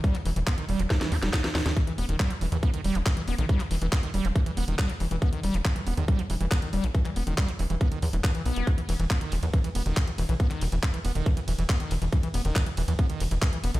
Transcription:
<<
  \new Staff \with { instrumentName = "Acid bass" } { \clef bass \time 4/4 \key e \minor \tempo 4 = 139 g16 e16 e16 e16 b16 dis16 g16 e16 e16 e16 fis'16 g16 dis16 e16 e16 dis16 | e16 e16 b16 dis16 g16 e16 e16 e16 b16 dis16 g16 e16 e16 e16 b16 dis16 | g16 e16 e16 e16 b16 dis16 g16 e16 e16 e16 b16 dis16 g16 e16 e16 e16 | b16 dis16 g16 e16 e16 e16 b16 dis16 g16 e16 e16 e16 b16 dis16 g16 e16 |
e16 e16 b16 dis16 g16 e16 e16 e16 b16 dis16 e16 e16 e16 e16 b8 | e16 e16 e16 e16 b16 dis16 e16 e16 e16 e16 b16 dis16 e16 e16 e16 e16 | b16 dis16 e16 e16 e16 e16 b16 dis16 e16 e16 e16 e16 b16 dis16 e16 e16 | e16 e16 b16 dis16 e16 e16 e16 e16 b16 dis16 e16 e16 e16 e16 b16 dis16 | }
  \new Staff \with { instrumentName = "Analog synth bass" } { \clef bass \time 4/4 \key e \minor r8 e,,16 e,,16 r8 e,,16 e,,16 r8 e,16 e,,16 r8 e,16 e,16 | r8 e,,16 e,,16 r8 e,,16 e,16 r8 e,,16 e,,16 r8 e,,16 b,,16 | r8 e,,16 e,,16 r8 e,,16 e,,16 r8 e,,16 e,,16 r8 e,,16 e,,16 | r8 e,,16 e,,16 r8 e,,16 e,16 r8 e,,16 e,,16 r8 e,,16 b,,16 |
r8 e,,16 e,,16 r8 e,,16 e,,16 r8 e,16 e,,16 r8 b,,16 e,,16 | r8 e,,16 e,,16 r8 e,,16 e,16 r8 e,,16 e,,16 r8 e,,16 b,,16 | r8 e,,16 e,,16 r8 e,,16 e,,16 r8 e,,16 e,,16 r8 e,,16 e,,16 | r8 e,,16 e,,16 r8 e,,16 e,16 r8 e,,16 e,,16 r8 e,,16 b,,16 | }
  \new DrumStaff \with { instrumentName = "Drums" } \drummode { \time 4/4 <hh bd>16 <hc hh>16 hho16 hh16 <hc hh bd>16 hh16 hho16 hh16 <hh bd sn>16 <hh sn>16 hho16 <hh sn>16 <hc hh bd sn>16 <hh sn>16 <hho sn>16 <hh sn>16 | <hh bd>16 hh16 hho16 hh16 <hc hh bd>16 hh16 hho16 hh16 <hh bd>16 hh16 hho16 hh16 <hc hh bd>16 hh16 hho16 hh16 | <hh bd>16 <hc hh>16 hho16 hh16 <hc hh bd>16 hh16 hho16 hh16 <hh bd>16 hh16 hho16 hh16 <hc hh bd>16 hh16 hho16 hh16 | <hh bd>16 hh16 hho16 hh16 <hc hh bd>16 hh16 hho16 hh16 <hh bd>16 hh16 hho16 hh16 <hc hh bd>16 hh16 hho16 hh16 |
<hh bd>16 <hc hh>16 hho16 hh16 <hc hh bd>16 hh16 hho16 hh16 <hh bd>16 hh16 hho16 hh16 <hc hh bd>16 hh16 hho16 hh16 | <hh bd>16 hh16 <hho cymr>16 hh16 <hc hh bd>16 hh16 <hho cymr>16 hh16 <hh bd>16 hh16 <hho cymr>16 hh16 <hc hh bd>16 hh16 <hho cymr>16 hh16 | <hh bd>16 <hc hh>16 <hho cymr>16 hh16 <hc hh bd>16 hh16 <hho cymr>16 hh16 <hh bd>16 hh16 <hho cymr>16 hh16 <hc hh bd>16 hh16 <hho cymr>16 hh16 | <hh bd>16 hh16 <hho cymr>16 hh16 <hc hh bd>16 hh16 <hho cymr>16 hh16 <hh bd>16 hh16 <hho cymr>16 hh16 <hc hh bd>16 hh16 <hho cymr>16 hh16 | }
>>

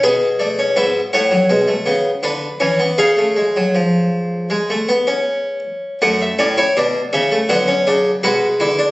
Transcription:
<<
  \new Staff \with { instrumentName = "Harpsichord" } { \time 4/4 \key fis \minor \tempo 4 = 81 << { b'8 d''8 e''8 fis''2~ fis''8 | eis''2.~ eis''8 r8 | fis''16 e''16 d''16 cis''16 d''8 e''8 fis''4 b'4 | } \\ { gis'4 b'8 cis''4. b'4 | gis'2.~ gis'8 r8 | r8 cis'16 e'16 d'8 cis'16 a16 b16 cis'16 d'8 fis'8 e'16 d'16 | } >> }
  \new Staff \with { instrumentName = "Harpsichord" } { \clef bass \time 4/4 \key fis \minor << { b8 a16 cis'16 b8 a16 fis16 gis16 a16 b8 d'8 cis'16 b16 | cis'16 a16 gis16 fis16 eis4 gis16 a16 b16 cis'4~ cis'16 | a2 fis4 gis4 | } \\ { b,4 gis,8 a,8 b,8 cis8 d8 e8 | cis2.~ cis8 r8 | fis,8 a,8 b,8 cis8 d8 cis8 b,8 d8 | } >> }
>>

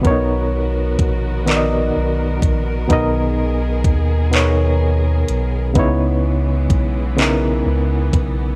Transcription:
<<
  \new Staff \with { instrumentName = "Reed electric piano" } { \time 6/8 \key b \major \tempo 4. = 42 <b, b cis' dis' ais' cis''>4 r8 <dis b dis' ais' d'' dis''>4 r8 | <b, b dis' ais' dis''>4 r8 <b, b dis' ais' cis''>4 r8 | <cis b dis' e' cis''>4 r8 <cis b dis' e' ais'>4 r8 | }
  \new Staff \with { instrumentName = "String section" } { \time 6/8 \key b \major << { fis'2. | gis'2. | e2. | } \\ { <dis b ais'>2.~ | <dis b ais'>2. | <cis gis b>2. | } >> }
  \new Staff \with { instrumentName = "Analog synth bass" } { \clef bass \time 6/8 \key b \major b,,4 ais,,4 b,,8 ais,,8 | b,,4 dis,4. b,,8 | cis,4 b,,4 cis,8 b,,8 | }
  \new DrumStaff \with { instrumentName = "Drums" } \drummode { \time 6/8 <hh bd>4 <hh bd>8 <hc hh>4 <hh bd>8 | <hh bd>4 <hh bd>8 <hc hh>4 hh8 | <hh bd>4 <hh bd>8 <hc hh>4 <hh bd>8 | }
>>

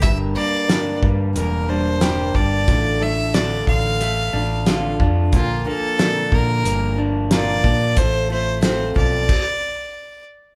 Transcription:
<<
  \new Staff \with { instrumentName = "Fiddle" } { \time 4/4 \key d \minor \tempo 4 = 91 e''8 d''4 r8 bes'8 c''4 d''8~ | d''8 e''8 d''8 f''2 r8 | f'8 a'4 bes'4 r8 d''4 | c''8 c''8 c''8 d''2 r8 | }
  \new Staff \with { instrumentName = "Steel-string acoustic guitar" } { \time 4/4 \key d \minor <g, d g bes d' bes'>8 <g bes d' bes'>8 <g, d g bes d' bes'>4 <g bes d' bes'>8 <g bes d' bes'>8 <g, d g bes d' bes'>8 <g bes d' bes'>8 | <a, d a d' f' a'>8 <a d' f' a'>8 <a, d a d' f' a'>4 <a d' f' a'>8 <a d' f' a'>8 <a, d a d' f' a'>8 <a d' f' a'>8 | <bes, d f bes d' bes'>8 <f bes d'>8 <bes, d f bes d'>4 <f bes d' bes'>8 <f bes d' bes'>8 <bes, d f bes d' bes'>8 <f bes d' bes'>8 | <a c' f' a'>8 <c' f' a'>8 <a c' f' a'>4 r2 | }
  \new Staff \with { instrumentName = "Clean electric guitar" } { \time 4/4 \key d \minor g,8 bes8 d'8 g8 bes8 d'8 g'8 d'8 | a,8 a8 d'8 d8 a8 d'8 f'8 d'8 | bes,8 bes8 d'8 d8 bes8 d'8 f'8 d'8 | a,8 a8 c'8 f8 r2 | }
  \new Staff \with { instrumentName = "Fingered electric bass" } { \clef bass \time 4/4 \key d \minor g,,8 r4 g,8 e,,4. g,,8 | a,,4. a,,4 a,,4 f,8 | bes,,8 r4 bes,8 g,,4. bes,8 | a,,4. b,,8 r2 | }
  \new DrumStaff \with { instrumentName = "Drums" } \drummode { \time 4/4 <hh bd>4 <hh sn>8 bd8 hh4 <hh sn>8 bd8 | <hh bd>4 <hh sn>8 bd8 hh4 <hh sn>8 bd8 | <hh bd>4 <hh sn>8 bd8 hh4 <hh sn>8 bd8 | <hh bd>4 <hh sn>8 bd8 <cymc bd>4 r4 | }
>>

